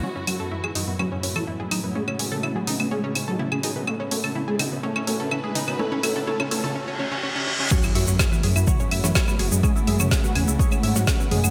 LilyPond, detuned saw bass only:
\new Staff \with { instrumentName = "Detuned saw bass" } { \clef bass \time 4/4 \key fis \dorian \tempo 4 = 125 r8 fis,16 fis,16 r8 fis,16 fis,16 r8 fis,16 fis,16 r8 fis,,16 fis,16 | r8 fis,16 fis,16 r8 e,16 cis,16 r8 gis,16 gis,16 r8 fis,16 fis,16 | r8 fis,16 fis,16 r8 fis,16 fis,16 r8 fis,16 fis,16 r8 fis,,16 fis,16 | r8 fis,16 fis,16 r8 e,16 cis,16 r2 |
r8 fis,16 fis,16 r8 fis,16 fis,16 r8 fis,16 fis,16 r8 fis,,16 fis,16 | r8 fis,16 fis,16 r8 e,16 cis,16 r8 gis,16 gis,16 r8 fis,16 fis,16 | }